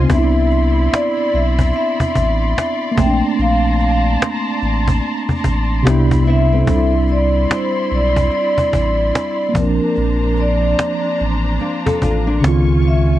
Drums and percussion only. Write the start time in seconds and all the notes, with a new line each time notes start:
0.10 cajon bass
0.51 cajon slap
0.94 cajon slap
1.33 cajon slap
1.59 cajon bass
1.73 cajon slap
2.00 cajon bass
2.15 cajon bass
2.58 cajon slap
2.97 cajon bass
3.38 cajon slap
3.79 cajon slap
4.22 cajon slap
4.62 cajon slap
4.88 cajon bass
5.02 cajon slap
5.29 cajon bass
5.44 cajon bass
5.87 cajon slap
6.11 cajon bass
6.25 cajon slap
6.67 cajon bass
7.08 cajon slap
7.51 cajon slap
7.91 cajon slap
8.16 cajon bass
8.30 cajon slap
8.58 cajon bass
8.73 cajon bass
9.15 cajon slap
9.55 cajon bass
9.95 cajon slap
10.36 cajon slap
10.79 cajon slap
11.19 cajon slap
11.59 cajon slap
11.86 cajon bass
12.02 cajon bass
12.44 cajon slap
12.83 cajon slap